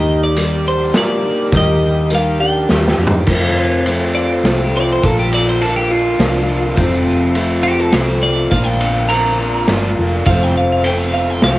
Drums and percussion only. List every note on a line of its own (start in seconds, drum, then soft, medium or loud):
0.36 closed hi-hat medium
0.36 tambourine loud
0.94 snare medium
0.94 closed hi-hat medium
0.94 tambourine loud
1.09 tambourine soft
1.24 tambourine soft
1.39 tambourine soft
1.52 kick loud
1.52 closed hi-hat medium
1.52 tambourine loud
1.68 tambourine soft
1.98 tambourine soft
2.10 closed hi-hat medium
2.10 tambourine loud
2.41 tambourine soft
2.69 snare medium
2.69 tambourine medium
2.88 snare medium
3.07 floor tom loud
3.27 kick loud
3.27 crash loud
3.86 ride medium
4.45 snare medium
4.45 ride medium
5.03 kick loud
5.03 ride medium
5.32 ride medium
5.61 ride medium
6.20 snare medium
6.20 ride medium
6.77 kick loud
6.77 ride medium
7.35 ride medium
7.92 snare medium
7.92 ride medium
8.52 kick loud
8.52 ride medium
8.81 ride medium
9.09 ride medium
9.67 snare medium
9.67 ride medium
10.25 kick loud
10.25 ride medium
10.25 tambourine loud
10.84 ride medium
10.84 tambourine loud
11.00 tambourine soft
11.42 snare medium
11.42 ride medium
11.42 tambourine loud